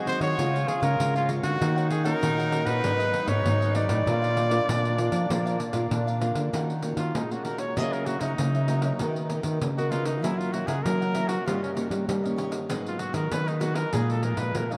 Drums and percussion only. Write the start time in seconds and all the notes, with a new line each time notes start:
0.07 pandeiro
0.21 pandeiro
0.39 pandeiro
0.56 pandeiro
0.68 pandeiro
0.83 pandeiro
1.00 pandeiro
1.16 pandeiro
1.29 pandeiro
1.43 pandeiro
1.62 pandeiro
1.78 pandeiro
1.90 pandeiro
2.05 pandeiro
2.23 pandeiro
2.40 pandeiro
2.52 pandeiro
2.67 pandeiro
2.84 pandeiro
3.00 pandeiro
3.14 pandeiro
3.28 pandeiro
3.46 pandeiro
3.62 pandeiro
3.75 pandeiro
3.89 pandeiro
4.07 pandeiro
4.24 pandeiro
4.37 pandeiro
4.51 pandeiro
4.69 pandeiro
4.85 pandeiro
4.98 pandeiro
5.12 pandeiro
5.30 pandeiro
5.47 pandeiro
5.60 pandeiro
5.73 pandeiro
5.91 pandeiro
6.08 pandeiro
6.21 pandeiro
6.35 pandeiro
6.54 pandeiro
6.70 pandeiro
6.82 pandeiro
6.97 pandeiro
7.15 pandeiro
7.32 pandeiro
7.45 pandeiro
7.58 pandeiro
7.77 pandeiro
7.93 pandeiro
8.06 pandeiro
8.21 pandeiro
8.38 pandeiro
8.55 pandeiro
8.68 pandeiro
8.82 pandeiro
8.99 pandeiro
9.16 pandeiro
9.30 pandeiro
9.43 pandeiro
9.61 pandeiro
9.78 pandeiro
9.92 pandeiro
10.05 pandeiro
10.24 pandeiro
10.41 pandeiro
10.54 pandeiro
10.68 pandeiro
10.86 pandeiro
11.02 pandeiro
11.15 pandeiro
11.29 pandeiro
11.48 pandeiro
11.64 pandeiro
11.77 pandeiro
11.91 pandeiro
12.09 pandeiro
12.25 pandeiro
12.38 pandeiro
12.52 pandeiro
12.70 pandeiro
12.86 pandeiro
12.99 pandeiro
13.14 pandeiro
13.31 pandeiro
13.48 pandeiro
13.61 pandeiro
13.75 pandeiro
13.93 pandeiro
14.10 pandeiro
14.23 pandeiro
14.37 pandeiro
14.55 pandeiro
14.72 pandeiro